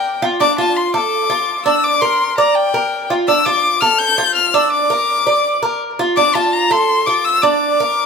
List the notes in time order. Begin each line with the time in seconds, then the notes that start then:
Already playing: A#4 G5
0.22 F4
0.40 D4 D6
0.58 F4 A5
0.77 C6
0.94 A4 D6
1.30 F4
1.66 D4 E6
1.84 D6
2.02 A#4 C6
2.38 D5 A#5
2.56 G5
2.74 A#4
3.10 F4
3.28 D4 E6
3.46 F4 D6
3.81 A4 F6
3.99 G6
4.18 F4
4.35 F6
4.54 D4 E6
4.73 D6
4.90 A#4
5.27 D5
5.63 A#4
5.99 F4
6.16 D4 D6
6.35 F4 A5
6.54 A#5
6.71 A4 C6
7.06 F4 D6
7.25 E6
7.43 D4 D6
7.80 A#4